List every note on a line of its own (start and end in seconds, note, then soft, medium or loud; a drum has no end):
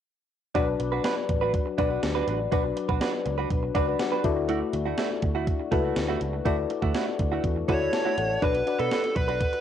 0.55 0.74 B1 loud
0.55 4.20 F#3 medium
0.55 0.68 D4 medium
0.55 1.35 D4 medium
0.55 4.20 D4 medium
0.55 1.35 F#4 medium
0.55 0.67 F#4 medium
0.55 4.20 B4 medium
0.55 1.35 B4 medium
0.55 0.66 B4 medium
0.55 1.35 D5 medium
0.55 kick loud
0.55 closed hi-hat medium
0.67 muted clean electric guitar stroke soft
0.80 0.98 B1 loud
0.80 muted clean electric guitar stroke soft
0.80 closed hi-hat medium
0.92 1.03 D4 soft
0.92 1.03 F#4 soft
0.92 1.02 B4 medium
1.04 1.17 D4 medium
1.04 1.16 F#4 medium
1.04 1.15 B4 medium
1.04 snare loud
1.04 closed hi-hat medium
1.17 muted clean electric guitar stroke soft
1.29 1.57 A1 medium
1.29 muted clean electric guitar stroke soft
1.29 kick medium
1.29 closed hi-hat medium
1.41 1.52 D4 soft
1.41 1.52 F#4 medium
1.41 1.51 B4 medium
1.54 muted clean electric guitar stroke soft
1.54 kick medium
1.54 closed hi-hat medium
1.66 muted clean electric guitar stroke soft
1.78 1.97 B1 medium
1.78 2.38 D4 medium
1.78 1.90 D4 medium
1.78 2.38 F#4 medium
1.78 1.90 F#4 medium
1.78 2.38 B4 medium
1.78 1.89 B4 medium
1.78 2.38 D5 medium
1.78 kick medium
1.78 closed hi-hat medium
1.90 2.01 D4 soft
1.90 2.01 F#4 soft
1.90 2.00 B4 medium
2.03 2.21 D2 medium
2.03 muted clean electric guitar stroke soft
2.03 snare loud
2.03 closed hi-hat medium
2.15 2.26 D4 medium
2.15 2.27 F#4 medium
2.15 2.27 B4 medium
2.27 2.46 A1 medium
2.27 2.37 D4 medium
2.27 2.38 F#4 medium
2.27 2.38 B4 medium
2.27 closed hi-hat medium
2.39 muted clean electric guitar stroke soft
2.52 2.71 B1 loud
2.52 3.31 D4 medium
2.52 2.65 D4 medium
2.52 3.31 F#4 medium
2.52 2.64 F#4 medium
2.52 3.32 B4 medium
2.52 2.63 B4 medium
2.52 3.32 D5 medium
2.52 kick loud
2.52 closed hi-hat medium
2.64 muted clean electric guitar stroke soft
2.77 muted clean electric guitar stroke soft
2.77 closed hi-hat medium
2.89 2.98 B1 medium
2.89 3.00 D4 soft
2.89 2.99 F#4 medium
2.89 2.99 B4 medium
2.89 kick medium
3.01 3.14 D4 medium
3.01 3.13 F#4 medium
3.01 3.12 B4 loud
3.01 snare loud
3.01 closed hi-hat medium
3.13 muted clean electric guitar stroke soft
3.26 3.44 C#2 medium
3.26 muted clean electric guitar stroke soft
3.26 closed hi-hat medium
3.38 3.49 D4 soft
3.38 3.49 F#4 medium
3.38 3.48 B4 medium
3.50 3.69 B1 medium
3.50 muted clean electric guitar stroke soft
3.50 kick medium
3.50 closed hi-hat medium
3.63 muted clean electric guitar stroke soft
3.75 3.94 C#2 medium
3.75 4.24 D4 medium
3.75 3.87 D4 medium
3.75 4.23 F#4 medium
3.75 3.87 F#4 medium
3.75 4.24 B4 medium
3.75 3.86 B4 medium
3.75 4.24 D5 medium
3.75 3.98 B5 medium
3.75 kick medium
3.75 closed hi-hat medium
3.87 3.98 D4 soft
3.87 3.98 F#4 soft
3.87 3.97 B4 medium
3.99 4.23 F#5 medium
3.99 snare loud
3.99 closed hi-hat medium
4.12 4.24 D4 medium
4.12 4.24 F#4 medium
4.12 4.25 B4 medium
4.24 4.61 D2 medium
4.24 8.14 A3 medium
4.24 8.14 D4 medium
4.24 5.03 E4 medium
4.24 5.04 F#4 medium
4.24 8.14 F#4 medium
4.24 5.04 A4 medium
4.24 5.04 D5 medium
4.24 4.47 E5 medium
4.24 muted clean electric guitar stroke soft
4.24 kick loud
4.24 closed hi-hat medium
4.37 muted clean electric guitar stroke medium
4.49 4.62 A3 medium
4.49 4.61 E4 medium
4.49 4.60 F#4 medium
4.49 closed hi-hat medium
4.61 muted clean electric guitar stroke soft
4.73 4.92 D2 loud
4.73 muted clean electric guitar stroke soft
4.73 closed hi-hat medium
4.86 4.96 A3 soft
4.86 4.96 E4 medium
4.86 4.96 F#4 medium
4.98 5.11 A3 medium
4.98 5.10 E4 medium
4.98 5.09 F#4 medium
4.98 snare loud
4.98 closed hi-hat medium
5.10 muted clean electric guitar stroke soft
5.22 5.50 D2 medium
5.22 muted clean electric guitar stroke soft
5.22 kick medium
5.22 closed hi-hat medium
5.35 5.46 A3 medium
5.35 5.45 E4 medium
5.35 5.45 F#4 medium
5.47 muted clean electric guitar stroke soft
5.47 kick medium
5.47 closed hi-hat medium
5.60 muted clean electric guitar stroke soft
5.71 5.90 C#2 medium
5.71 5.84 A3 medium
5.71 6.31 E4 medium
5.71 5.84 E4 medium
5.71 6.31 F#4 medium
5.71 5.83 F#4 medium
5.71 6.31 A4 medium
5.71 6.32 B4 medium
5.71 kick medium
5.71 closed hi-hat medium
5.84 5.95 A3 soft
5.84 5.95 E4 medium
5.84 5.94 F#4 medium
5.96 6.15 D2 medium
5.96 muted clean electric guitar stroke soft
5.96 snare loud
5.96 closed hi-hat medium
6.08 6.20 A3 medium
6.08 6.20 E4 medium
6.08 6.21 F#4 medium
6.21 6.39 C#2 medium
6.21 muted clean electric guitar stroke soft
6.21 closed hi-hat medium
6.33 muted clean electric guitar stroke medium
6.45 6.64 D2 medium
6.45 6.58 A3 medium
6.45 7.25 E4 medium
6.45 6.58 E4 medium
6.45 7.25 F#4 medium
6.45 6.57 F#4 medium
6.45 7.25 A4 medium
6.45 7.25 D5 medium
6.45 kick loud
6.45 closed hi-hat medium
6.59 muted clean electric guitar stroke soft
6.70 muted clean electric guitar stroke soft
6.70 closed hi-hat medium
6.82 6.92 D2 medium
6.82 6.93 A3 soft
6.82 6.93 E4 medium
6.82 6.92 F#4 medium
6.82 kick medium
6.94 7.08 A3 medium
6.94 7.07 E4 medium
6.94 7.06 F#4 medium
6.94 snare loud
6.94 closed hi-hat medium
7.07 muted clean electric guitar stroke soft
7.19 7.38 D2 medium
7.19 muted clean electric guitar stroke soft
7.19 kick medium
7.19 closed hi-hat medium
7.32 7.43 A3 medium
7.32 7.42 E4 medium
7.32 7.42 F#4 medium
7.44 7.62 E2 medium
7.44 muted clean electric guitar stroke soft
7.44 kick medium
7.44 closed hi-hat medium
7.56 muted clean electric guitar stroke soft
7.68 7.87 D2 medium
7.68 7.81 A3 medium
7.68 8.28 E4 medium
7.68 7.80 E4 medium
7.68 8.28 F#4 medium
7.68 7.79 F#4 medium
7.68 7.93 A4 medium
7.68 8.45 C#5 medium
7.68 7.94 D5 medium
7.68 kick medium
7.68 closed hi-hat medium
7.81 7.92 A3 soft
7.81 7.91 E4 soft
7.81 7.91 F#4 medium
7.93 8.17 C#5 medium
7.93 8.17 A5 medium
7.93 muted clean electric guitar stroke soft
7.93 snare medium
7.93 closed hi-hat medium
8.05 8.17 A3 medium
8.05 8.17 E4 medium
8.05 8.18 F#4 medium
8.18 8.36 A1 medium
8.18 8.65 A4 medium
8.18 8.65 F#5 medium
8.18 muted clean electric guitar stroke soft
8.18 closed hi-hat medium
8.30 muted clean electric guitar stroke soft
8.42 8.61 B1 medium
8.42 8.62 D4 medium
8.42 8.55 D4 medium
8.42 8.62 F#4 medium
8.42 8.54 F#4 medium
8.42 8.62 B4 medium
8.42 8.79 B4 medium
8.42 8.53 B4 medium
8.42 8.62 D5 medium
8.42 kick loud
8.42 closed hi-hat medium
8.54 muted clean electric guitar stroke soft
8.54 closed hi-hat soft
8.66 9.46 D4 medium
8.66 9.46 F#4 medium
8.66 9.46 B4 medium
8.66 9.47 D5 medium
8.66 muted clean electric guitar stroke soft
8.66 closed hi-hat medium
8.79 8.88 B2 medium
8.79 8.90 D4 soft
8.79 8.90 F#4 soft
8.79 9.16 A4 medium
8.79 8.89 B4 medium
8.79 closed hi-hat soft
8.91 9.04 D4 medium
8.91 9.04 F#4 medium
8.91 9.03 B4 medium
8.91 snare loud
8.91 closed hi-hat medium
9.04 muted clean electric guitar stroke soft
9.04 closed hi-hat soft
9.16 9.44 B1 medium
9.16 9.61 B4 medium
9.16 muted clean electric guitar stroke soft
9.16 kick medium
9.16 closed hi-hat medium
9.28 9.39 D4 soft
9.28 9.39 F#4 medium
9.28 9.38 B4 medium
9.28 closed hi-hat soft
9.40 muted clean electric guitar stroke soft
9.40 kick medium
9.40 closed hi-hat medium
9.53 muted clean electric guitar stroke soft
9.53 closed hi-hat soft